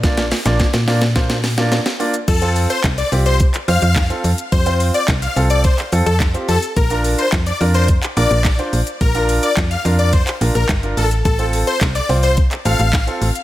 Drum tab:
CC |----------------|x---------------|----------------|----------------|
HH |-xox-xox-xox-xox|xxoxxxoxxxoxxxox|xxoxxxoxxxoxxxox|xxoxxxoxxxoxxxox|
SH |xxxxxxxxxxxxxxxx|xxxxxxxxxxxxxxxx|xxxxxxxxxxxxxxxx|xxxxxxxxxxxxxxxx|
CP |----------------|----x----x--x---|----x----x--x---|----x----x--x---|
SD |oooooooooooooo--|----o-------o---|----o-------o---|----o-------o---|
BD |o---o---o-------|o---o---o---o---|o---o---o---o---|o---o---o---o---|

CC |----------------|----------------|
HH |xxo-xxoxxxoxxxox|xxoxxxoxxxoxxxox|
SH |xxxxxxxxxxxxxxxx|xxxxxxxxxxxxxxxx|
CP |----x----x--x---|----x----x--x---|
SD |----o-------o---|----o-------o---|
BD |o---o---o---o---|o---o---o---o---|